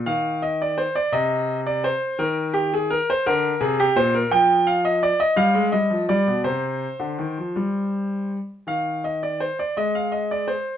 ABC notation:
X:1
M:6/8
L:1/16
Q:3/8=56
K:Bbmix
V:1 name="Grand piano"
f2 e d c d e3 d c2 | B2 G A B c B2 A G c B | [K:Cm] g2 f e d e f2 e2 d2 | c8- c2 z2 |
[K:Ablyd] f2 e d c d e f e d c2 |]
V:2 name="Grand piano" clef=bass
E,6 C,6 | E,6 D,2 C,2 B,,2 | [K:Cm] F,6 G, A, G, F, G, =B,, | C,3 D, E, F, G,6 |
[K:Ablyd] E,6 A,6 |]